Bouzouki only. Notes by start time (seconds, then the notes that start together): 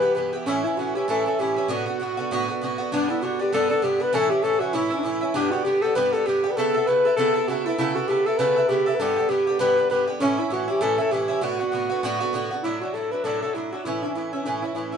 0.02 E3 B3 G4
0.15 G2 E3 B3 G4
0.33 E3 B3 G4
0.46 A2 E3 C#4 E4
0.64 E3 C#4 E4
0.77 A2 E3 C#4 E4
0.95 E3 C#4 E4
1.08 A2 E3 C#4 E4
1.26 E3 C#4 E4
1.39 A2 E3 C#4 E4
1.56 E3 C#4 E4
1.68 A2 D3 B3 F#4
1.86 D3 B3 F#4
2.00 A2 D3 B3 F#4
2.17 D3 B3 F#4
2.31 A2 D3 B3 F#4
2.48 D3 B3 F#4
2.61 A2 D3 B3 F#4
2.78 D3 B3 F#4
2.92 G2 D3 B3 D4
3.08 D3 B3 D4
3.21 G2 D3 B3 D4
3.39 D3 B3 D4
3.52 G2 D3 B3 D4
3.70 D3 B3 D4
3.82 G2 D3 B3 D4
4.00 D3 B3 D4
4.13 A2 E3 C#4 E4
4.30 E3 C#4 E4
4.43 A2 E3 C#4 E4
4.60 E3 C#4 E4
4.73 A2 E3 C#4 E4
4.90 E3 C#4 E4
5.03 A2 E3 C#4 E4
5.21 E3 C#4 E4
5.34 G2 D3 B3 G4
5.51 D3 B3 G4
5.65 G2 D3 B3 G4
5.82 D3 B3 G4
5.95 G2 D3 B3 G4
6.12 D3 B3 G4
6.26 G2 D3 B3 G4
6.44 D3 B3 G4
6.57 C#3 B3 E4 A4
6.74 B3 E4 A4
6.87 C#3 B3 E4 A4
7.05 B3 E4 A4
7.17 C#3 B3 E4 A4
7.34 B3 E4 A4
7.48 C#3 B3 E4 A4
7.66 B3 E4 A4
7.78 C#3 B3 E4 A4
7.95 B3 E4 A4
8.08 C#3 B3 E4 A4
8.26 B3 E4 A4
8.39 C#3 B3 E4 A4
8.56 B3 E4 A4
8.69 C#3 B3 E4 A4
8.86 B3 E4 A4
9.00 G2 D3 B3 G4
9.16 D3 B3 G4
9.29 G2 D3 B3 G4
9.47 D3 B3 G4
9.59 G2 D3 B3 G4
9.77 D3 B3 G4
9.90 G2 D3 B3 G4
10.07 D3 B3 G4
10.20 A2 E3 C#4 E4
10.38 E3 C#4 E4
10.50 A2 E3 C#4 E4
10.68 E3 C#4 E4
10.81 A2 E3 C#4 E4
10.98 E3 C#4 E4
11.11 A2 E3 C#4 E4
11.28 E3 C#4 E4
11.41 A2 D3 B3 F#4
11.59 D3 B3 F#4
11.72 A2 D3 B3 F#4
11.90 D3 B3 F#4
12.03 A2 D3 B3 F#4
12.20 D3 B3 F#4
12.33 A2 D3 B3 F#4
12.51 D3 B3 F#4
12.64 A2 F#3 D4 E4
12.81 F#3 D4 E4
12.94 A2 F#3 D4 E4
13.11 F#3 D4 E4
13.24 A2 F#3 D4 E4
13.42 F#3 D4 E4
13.55 A2 F#3 D4 E4
13.72 F#3 D4 E4
13.85 A2 E3 C#4 E4
14.03 E3 C#4 E4
14.15 A2 E3 C#4 E4
14.33 E3 C#4 E4
14.46 A2 E3 C#4 E4
14.62 E3 C#4 E4
14.75 A2 E3 C#4 E4
14.92 C#4 E4